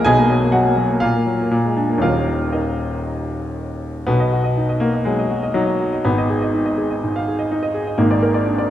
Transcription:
grand piano
0.05 B1 B2 G#4 D#5 G#5
0.18 A#3
0.30 F#3
0.42 A#3
0.52 F#3 F#4 D#5 F#5
0.65 A#3
0.77 F#3
0.89 A#3
1.00 A#2 F4 F5
1.14 A#3
1.26 F#3
1.40 A#3
1.51 A#2
1.65 G#3
1.77 D4
1.90 A#3
1.98 D#1 D#2 F#3 A#3 D#4 F5
2.02 F4 A#4
2.52 D#4 A#4 D#5
4.07 B1 B2 B3
4.20 D#5
4.32 F#4
4.44 D#5
4.57 D#4
4.69 D#5
4.80 A#3 F#4
4.94 D#5
5.05 F#3 G#3
5.19 D#5
5.31 F#4
5.43 D#5
5.54 F#3 D#4
5.67 D#5
5.80 F#4
5.92 D#5
6.05 G#1 G#2 B3
6.18 D#5
6.30 G#4
6.42 D#5
6.54 D#4
6.65 D#5
6.78 G#4
6.90 D#5
7.04 G#2
7.16 F5
7.28 G#4
7.39 D#5
7.51 D#4
7.63 D#5
7.74 G#4
7.87 D#5
7.98 G#1 G#2 A#3
8.11 D5
8.22 A#4
8.34 D5
8.46 D4
8.58 D5

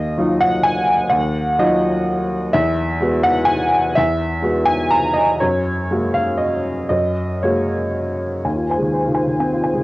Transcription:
upright piano
Already playing: D#2 D#5
0.18 F#3 D#4 F4
0.41 F#5
0.64 G#5
1.10 D#2 F#5
1.59 F#3 D#4 F4 D#5
2.53 E2 E5
3.00 G#3 B3 F#4
3.23 F#5
3.45 G#5
3.95 E2 E5
4.42 G#3 B3 F#4
4.65 G#5
4.90 A#5
5.14 D#5
5.40 F#2 C#5
5.91 G#3 A#3 F#4
6.14 F5
6.38 D#5
6.89 F#2 D#5
7.43 G#3 A#3 F#4 C#5
8.45 D#2 G#5
8.55 F4
8.70 C5 G#5
8.77 G#3
8.82 D#3
8.94 C5
9.05 D#3 F4
9.14 C5 G#5
9.27 D#3
9.40 C4 G#5
9.53 F4
9.63 C5 G#5
9.73 D#3 G#3

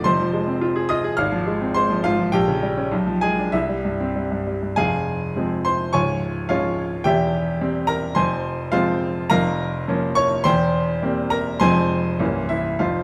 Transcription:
grand piano
0.04 F1 F2 C5 C6
0.20 F3
0.33 G#3
0.48 C4
0.61 F4
0.76 G#4
0.89 F4 D#5 D#6
1.04 G#4
1.17 G#1 F5 F6
1.32 F3
1.47 G#3
1.61 C4
1.74 G#3 C5 C6
1.90 F3
2.04 G#2 F4 F5
2.19 F3
2.32 A#1 G4 G5
2.48 C#3
2.63 G3
2.77 C#4
2.92 B1
3.06 F3
3.21 G#3 G#4 G#5
3.38 D4
3.52 C2 E4 E5
3.69 G3
3.85 G2
4.00 C4
4.16 G3
4.32 G2
4.47 G3
4.63 G2
4.76 F1 F2 G#4 F5 G#5
5.36 F3 G#3 C4
5.65 C5 C6
5.93 C#1 C#2 C#5 G#5 C#6
6.49 F3 G#3 C#4 F4 C#5 F5
7.04 E1 E2 G4 E5 G5
7.61 G3 C4
7.87 A#4 A#5
8.15 F1 F2 C5 G#5 C6
8.72 F3 G#3 C4 F4 C5 F5
9.30 F1 F2 A#4 F5 A#5
9.88 F3 A#3 C#4
10.15 C#5 C#6
10.44 E1 E2 C5 G5 C6
11.02 G3 A#3 C4
11.30 A#4 A#5
11.60 F1 F2 F3 G#3 C4 C5 G#5 C6
12.19 C1 C2 E3 A#3 C#4
12.49 E4 E5
12.79 F1 F2 F4 C5 F5

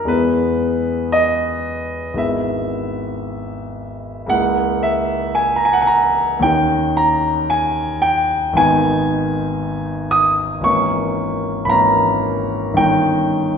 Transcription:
grand piano
Already playing: A#4
0.05 E2 G#3 B3 B4
0.09 E4
1.12 D#5
2.13 G#1 G#3 B3
2.18 E4 E5
4.26 C#2 G#3 A#3 E4 F#5
4.83 E5
5.35 G#5
5.56 A#5
5.65 G#5
5.73 F#5
5.82 G#5
5.87 A#5
6.39 D#2 D#3 C#4 D#4 G5
6.97 A#5
7.50 G#5
8.02 G5
8.53 G#1 D#3 B3 G#5
8.57 D#4
10.11 D#6
10.61 G#1 E3 A#3 C#6
10.65 C#4
11.65 G#1 E3 B5
11.69 A#3 C#4 A#5
12.73 G1 D#3 C#4 D#4 G5

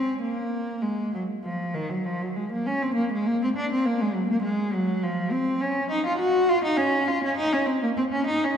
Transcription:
cello
Already playing: C4
0.22 A#3
0.82 G#3
1.14 F#3
1.44 F3
1.74 D#3
1.90 F#3
2.05 F3
2.22 F#3
2.36 G#3
2.52 A#3
2.66 C#4
2.82 C4
2.95 A#3
3.12 G#3
3.27 A#3
3.43 C4
3.57 D4
3.72 C4
3.85 A#3
4.01 G#3
4.14 F#3
4.30 A#3
4.43 G#3
4.73 F#3
5.03 F3
5.31 C4
5.61 C#4
5.90 D#4
6.06 F4
6.19 F#4
6.49 F4
6.64 D#4
6.77 C#4
7.08 F4
7.24 C#4
7.37 D#4
7.53 C#4
7.66 C4
7.83 A#3
7.97 C4
8.13 C#4
8.27 D#4
8.44 C#4

